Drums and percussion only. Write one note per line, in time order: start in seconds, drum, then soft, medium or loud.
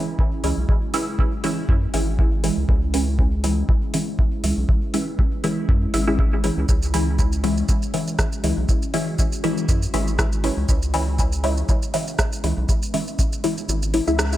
0.19 kick loud
0.44 open hi-hat medium
0.69 kick loud
0.94 open hi-hat medium
1.19 kick loud
1.44 open hi-hat medium
1.69 kick loud
1.94 open hi-hat medium
2.19 kick loud
2.44 open hi-hat medium
2.69 kick loud
2.94 open hi-hat medium
3.19 kick loud
3.44 open hi-hat medium
3.69 kick loud
3.94 open hi-hat medium
4.19 kick loud
4.44 open hi-hat medium
4.69 kick loud
4.94 open hi-hat medium
5.19 kick loud
5.44 open hi-hat medium
5.69 kick loud
5.94 open hi-hat medium
6.19 kick loud
6.44 open hi-hat medium
6.69 kick loud
6.69 shaker medium
6.82 shaker soft
6.94 open hi-hat medium
7.19 kick loud
7.19 shaker medium
7.32 shaker soft
7.44 open hi-hat medium
7.57 shaker soft
7.69 kick loud
7.69 shaker medium
7.82 shaker soft
7.94 open hi-hat medium
8.07 shaker soft
8.19 kick loud
8.19 cross-stick medium
8.19 shaker medium
8.32 shaker soft
8.44 open hi-hat medium
8.69 kick loud
8.69 shaker medium
8.82 shaker soft
8.94 open hi-hat medium
9.19 kick loud
9.19 shaker medium
9.32 shaker soft
9.44 open hi-hat medium
9.57 shaker soft
9.69 kick loud
9.69 shaker medium
9.82 shaker soft
9.94 open hi-hat medium
10.07 shaker soft
10.19 kick loud
10.19 cross-stick medium
10.19 shaker medium
10.32 shaker soft
10.44 open hi-hat medium
10.69 kick loud
10.69 shaker medium
10.82 shaker soft
10.94 open hi-hat medium
11.19 kick loud
11.19 shaker medium
11.32 shaker soft
11.44 open hi-hat medium
11.57 shaker soft
11.69 kick loud
11.69 shaker medium
11.82 shaker soft
11.94 open hi-hat medium
12.07 shaker soft
12.19 kick medium
12.19 cross-stick medium
12.19 shaker medium
12.33 shaker soft
12.44 open hi-hat medium
12.69 kick loud
12.69 shaker medium
12.83 shaker soft
12.94 open hi-hat medium
13.08 shaker soft
13.19 kick loud
13.19 shaker medium
13.33 shaker soft
13.44 open hi-hat medium
13.58 shaker soft
13.69 shaker medium
13.82 shaker soft
13.94 open hi-hat medium
14.07 shaker soft
14.19 cross-stick loud
14.19 shaker medium
14.33 shaker soft